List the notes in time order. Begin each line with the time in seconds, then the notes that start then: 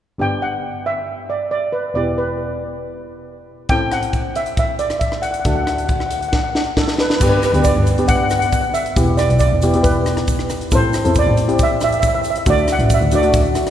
0.19 G1 B3 D4 G4 G5
0.42 F#5
0.86 E5
1.30 D5
1.51 D5
1.72 B4
1.94 E1 B3 E4 G4 D5
2.18 B4
3.69 A1 C4 E4 A4 G5, kick, closed hi-hat
3.91 F#5, cross-stick, closed hi-hat
4.03 closed hi-hat
4.13 kick, closed hi-hat
4.35 E5, closed hi-hat
4.46 closed hi-hat
4.57 E5, kick, closed hi-hat
4.79 D5, closed hi-hat
4.90 cross-stick, closed hi-hat
4.99 E5, kick, closed hi-hat
5.12 cross-stick
5.22 F#5, closed hi-hat
5.31 F#5, closed hi-hat
5.40 F#5
5.45 D2 D4 F#4 A4, kick, closed hi-hat
5.49 F#5
5.56 F#5
5.63 F#5, cross-stick, closed hi-hat
5.69 F#5
5.78 F#5, closed hi-hat
5.85 F#5, closed hi-hat
5.89 F#5, kick
5.99 F#5, cross-stick
6.06 F#5
6.11 F#5, closed hi-hat
6.21 F#5, closed hi-hat
6.28 F#5, snare
6.33 F#5, kick
6.43 F#5
6.50 F#5
6.55 F#5, snare
6.77 A4, kick, snare
6.88 snare
6.98 B4, snare
7.07 B4, snare
7.16 B4
7.21 G1 B3 D4 G4 B4, kick, crash, shaker
7.29 B4
7.37 B4
7.42 B4, cross-stick, closed hi-hat, shaker
7.52 D2 B3 D4 G4 B4, closed hi-hat
7.64 D5, kick, closed hi-hat, shaker
7.76 G1
7.86 closed hi-hat, shaker
7.98 B3 D4 G4, closed hi-hat
8.08 F#5, kick, closed hi-hat, shaker
8.16 F#5
8.23 F#5
8.30 F#5, cross-stick, closed hi-hat, shaker
8.39 F#5, closed hi-hat, shaker
8.46 F#5
8.53 F#5, kick, closed hi-hat, shaker
8.61 F#5, shaker
8.74 E5, closed hi-hat, shaker
8.86 closed hi-hat
8.96 E1 B3 E4 G4, kick, closed hi-hat, shaker
9.17 D5, cross-stick, closed hi-hat, shaker
9.30 B1, closed hi-hat
9.39 D5, kick, closed hi-hat, shaker
9.52 E1
9.62 B3 E4 G4, closed hi-hat, shaker
9.74 B3 E4 G4, closed hi-hat
9.83 B4, kick, closed hi-hat, shaker
10.06 cross-stick, closed hi-hat, shaker
10.17 cross-stick, closed hi-hat, shaker
10.27 kick, closed hi-hat, shaker
10.39 cross-stick, shaker
10.50 cross-stick, closed hi-hat, shaker
10.61 closed hi-hat
10.71 A1 C4 E4 A4, kick, closed hi-hat, shaker
10.75 C5
10.93 cross-stick, closed hi-hat, shaker
11.04 E2 C4 E4 A4, closed hi-hat
11.15 kick, closed hi-hat, shaker
11.19 D5
11.27 A1
11.37 closed hi-hat, shaker
11.48 C4 E4 G4, closed hi-hat
11.59 kick, closed hi-hat, shaker
11.63 E5
11.80 E5, cross-stick, closed hi-hat, shaker
11.92 E5, closed hi-hat, shaker
12.00 E5, kick, closed hi-hat, shaker
12.08 E5
12.14 E5, shaker
12.21 E5, closed hi-hat, shaker
12.30 E5
12.36 closed hi-hat
12.46 D2 A3 D4 F#4, kick, closed hi-hat, shaker
12.50 D5
12.58 shaker
12.68 cross-stick, closed hi-hat, shaker
12.72 F#5
12.79 A1, closed hi-hat
12.90 kick, closed hi-hat, shaker
12.94 E5
13.01 D2, shaker
13.11 A3 D4 F#4 D5, closed hi-hat, shaker
13.23 A3 D4 F#4, closed hi-hat
13.33 kick, closed hi-hat, shaker
13.45 shaker
13.55 cross-stick, closed hi-hat, shaker
13.67 cross-stick, closed hi-hat